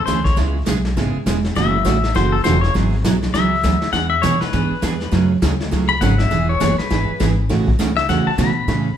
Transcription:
0.06 D2 C#3 E3 A3 C#4 G#4 C5, snare, hi-hat pedal
0.24 C#5, kick, snare
0.36 C#2 C#3 G#3 B3 E4 G#4, brush sweep, snare
0.66 B1 C#3 G#3 B3 E4 G#4, snare, hi-hat pedal
0.85 snare
0.97 G#1 C#3 G#3 B3 E4 G#4, brush sweep, snare
1.15 muted upright bass stroke
1.26 E1 C#3 G#3 B3 E4 G#4, snare, hi-hat pedal
1.44 snare
1.56 F#1 C#3 E3 A3 C#4 F#4 E5, brush sweep, snare
1.85 A1 C#3 E3 A3 C#4 F#4, snare, hi-hat pedal
2.04 snare
2.14 F#1 C#3 E3 A3 C#4 F#4 C5, brush sweep, snare
2.32 A4
2.44 E1 C#3 E3 A3 C#4 F#4 C5, snare, hi-hat pedal
2.61 C#5, snare
2.74 G#1 E3 F#3 B3 E4 G#4, brush sweep, snare
3.04 B1 E3 F#3 B3 E4 G#4, snare, hi-hat pedal
3.22 snare
3.34 C#2 E3 F#3 B3 E4 G#4 E5, brush sweep, snare
3.63 D2 E3 F#3 B3 E4 G#4, snare, hi-hat pedal
3.82 snare
3.93 E2 E3 B3 D4 G#4 F#5, brush sweep, snare
4.10 E5
4.22 B2 E3 B3 D4 G#4 C#5, snare, hi-hat pedal
4.41 B4, muted upright bass stroke, snare
4.53 G#2 E3 B3 D4 G#4, brush sweep, snare
4.71 muted upright bass stroke
4.82 E2 E3 B3 D4 G#4, snare, hi-hat pedal
5.00 snare
5.11 F#2 C#3 F#3 A3 C#4 G#4, brush sweep, snare
5.42 D2 C#3 F#3 A3 C#4 G#4, snare, hi-hat pedal
5.60 snare
5.71 C#2 C#3 F#3 A3 C#4 G#4, brush sweep, snare
5.89 B5
6.01 G#1 C#3 F#3 A3 C#4 G#4 F#5, snare, hi-hat pedal
6.18 E5, snare
6.31 E1 E3 B3 E4 G#4, brush sweep, snare
6.49 C#5
6.60 F#1 E3 B3 E4 G#4, snare, hi-hat pedal
6.78 B4, muted upright bass stroke, snare
6.90 G#1 E3 B3 E4 G#4, brush sweep, snare
7.10 muted upright bass stroke
7.20 G#1 E3 B3 E4 G#4, snare, hi-hat pedal
7.49 A1 C#3 E3 A3 C#4 F#4, brush sweep, snare
7.68 kick
7.79 C#2 C#3 E3 A3 C#4 F#4, snare, hi-hat pedal
7.97 E5, snare
8.09 E2 C#3 E3 A3 C#4 F#4 F#5, brush sweep, snare
8.27 A5, muted upright bass stroke
8.38 B2 C#3 E3 A3 C#4 F#4 B5, snare, hi-hat pedal
8.67 A2 C#3 E3 A3 C#4 A4, brush sweep, snare

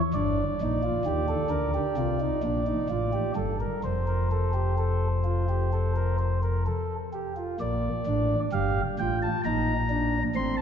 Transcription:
0.14 G1 G2 D4 D5
0.61 A#1 A#2 D#4
0.83 F4
1.05 D#2 D#3 G4
1.29 A4
1.50 D2 D3 A#4
1.74 G4
1.97 C2 C3 F4
2.20 D#4
2.43 A#1 A#2 D4
2.66 D#4
2.89 A1 A2 F4
3.13 G4
3.36 G1 G2 A4
3.60 A#4
3.84 F1 F2 C5
4.07 A#4
4.31 A4
4.53 G4
4.78 A4
5.24 F4
5.49 G4
5.73 A4
5.96 A#4
6.19 C5
6.43 A#4
6.66 A4
7.13 G4
7.36 F4
7.60 A#1 A#2 A#3 D5
8.06 A1 A2 D4
8.52 G1 G2 G4 F5
8.99 A1 A2 F4 G5
9.22 A5
9.45 A#1 A#2 D#4 A#5
9.90 D4
10.36 A1 A2 C4 C6
10.57 A5

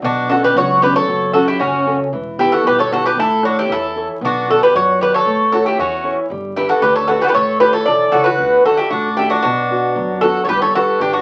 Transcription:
0.02 B1 B2 D4 F#4
0.29 B3 C#4 D4 F#4 A4
0.44 G4 B4
0.55 C#2 F#3 F#4 C#5
0.81 B3 C#4 D4 G4 B4
0.96 A4 C#5
1.07 F#1 F#3
1.33 C#4 F#4 A4
1.48 E4 G4
1.59 F#1 C#3 C#4 F#4
1.86 C#4 F#4 A4
2.13 E1 E3
2.38 B3 E4 G4
2.52 F#4 A4
2.65 G1 B2 G4 B4
2.79 A4 C#5
2.92 B3 E4 F#4 G4 A4
3.05 G4 B4
3.17 A1 A3 E4 A4
3.43 D4 E4 F#4 A4 C#5
3.59 E4 G4
3.69 E2 E3 E4 A4
3.96 E4 A4 C#5
4.21 B1 B3 D4
4.25 F#4
4.48 F#4 A4 B4 D5
4.63 G4 B4
4.73 F#2 F#3 F#4 C#5
4.99 F#4 G4 B4 D5
5.14 A4 C#5
5.25 A1 A3
5.52 E4 F#4 A4 C#5
5.66 E4 G4
5.78 E2 E3 C#4 F#4
6.04 E4 A4 C#5
6.30 G1 G3
6.56 D4 E4 G4 B4
6.69 F#4 A4
6.82 D2 D3 G4 B4
6.96 A4 C#5
7.08 D4 F#4 G4 A4 B4
7.21 F#4 G4 B4
7.26 G4 A4 B4
7.34 A1 A3 A4 C#5
7.60 E4 G4 A4 B4 C#5
7.73 A4 C#5
7.86 B1 E3 A4 D5
8.12 C#2 E4 F#4 A4 C#5
8.24 F#4 B4
8.38 D2 D3
8.65 D4 F#4 A4
8.77 E4 G4
8.91 A1 A3 D4 F#4
9.17 D4 E4 F#4 G4 A4
9.30 D4 F#4
9.43 B1 B2 D4 F#4
9.70 B3 D4 F#4
9.96 F#2 F#3
10.21 B3 D4 F#4 A4
10.45 G1 A4 C#5
10.49 G3 G4 B4
10.62 A4 C#5
10.75 D4 F#4 G4 A4 B4
11.00 G1 D3 D4 G4
11.13 D4 F#4

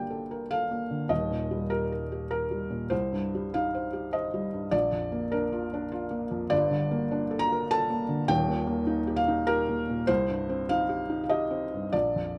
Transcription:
Already playing: G1 G2 D3 A#3 G4 D5 G5
0.10 A4
0.31 A#4
0.51 A4 F5
0.71 A#3
0.91 D3
1.09 D#1 D#2 D#5
1.31 A#2
1.51 G3
1.70 G4 A#4
1.92 A#4
2.12 G4
2.31 A#4
2.51 G3
2.70 A#2
2.90 C2 C5
3.12 G2
3.35 G3
3.54 D#4 F5
3.75 C5
3.93 G4
4.13 C5 D#5
4.34 G3
4.54 G2
4.71 A#1 D5
4.92 F2
5.12 A#3
5.32 D4 A#4
5.52 F4
5.73 D4
5.92 F4
6.11 A#3
6.31 F2
6.50 G1 G2 D5
6.71 D3
6.91 A#3
7.11 D4
7.31 A4
7.39 A#5
7.52 A#4
7.71 A4 A5
7.90 A#3
8.09 D3
8.28 D#1 D#2 G5
8.48 A#2
8.67 A#3
8.87 D#4
9.07 G4
9.16 F5
9.28 D#4
9.47 G4 A#4
9.69 A#3
9.89 A#2
10.07 C2 C5
10.29 G2
10.49 C4
10.69 D#4 F5
10.89 G4
11.09 D#4
11.24 F5
11.29 G4 D#5
11.50 C4
11.74 G2
11.93 A#1 D5
12.16 F2

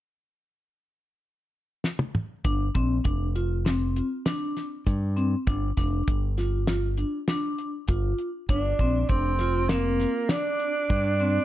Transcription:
1.84 snare
1.99 high tom
2.15 mid tom
2.44 G1 D4, kick, closed hi-hat
2.75 A#1 C4, kick, closed hi-hat
3.04 F1 D4, kick, closed hi-hat
3.36 F4, closed hi-hat
3.65 C4, snare, closed hi-hat
3.96 closed hi-hat
4.26 D4, snare, closed hi-hat
4.57 snare, closed hi-hat
4.87 G2, kick, closed hi-hat
5.16 C4, closed hi-hat
5.47 G1 D4, kick, closed hi-hat
5.77 F1 D4, kick, snare, closed hi-hat
6.08 G1, kick, closed hi-hat
6.38 F4, snare, closed hi-hat
6.67 F4, snare, closed hi-hat
6.97 D4, closed hi-hat
7.28 D4, snare, closed hi-hat
7.58 closed hi-hat
7.88 G1 F4, kick, closed hi-hat
8.18 closed hi-hat
8.49 G1 D4, kick, closed hi-hat
8.79 A#1 C4, kick, closed hi-hat
9.09 F1 C4 D4, kick, closed hi-hat
9.39 F4, snare, closed hi-hat
9.69 A#3 C4, snare, closed hi-hat
10.00 snare, closed hi-hat
10.29 D4, snare, closed hi-hat
10.59 closed hi-hat
10.89 G2, kick, closed hi-hat
11.20 C4, closed hi-hat

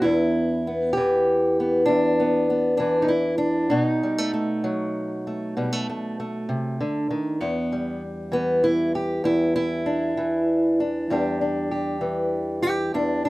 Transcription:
Already playing: B3
0.02 E2 E4
0.67 B3
0.93 G4
0.97 E3
1.60 B3
1.86 E2 D4
2.20 B3
2.50 B3
2.77 E3 D4
3.02 D#4
3.08 E4
3.38 D4
3.70 B2 D4
3.82 D#4
4.03 G3
4.18 A3
4.33 A3
4.64 F#3
5.27 A3
5.57 B2 G3
5.73 A3
5.89 A3
6.20 A3
6.49 C3
6.80 D3
7.10 D#3
7.40 E2 B3
7.72 G3
8.32 E3 B3
8.64 E4
8.95 G4
9.24 E2 E4
9.56 E4
9.86 D4
10.17 E3
10.80 D4
11.10 E2 G3 D4 G4
11.41 D4
11.71 G4
12.01 E3
12.62 G4
12.94 E2 D4
13.25 D4

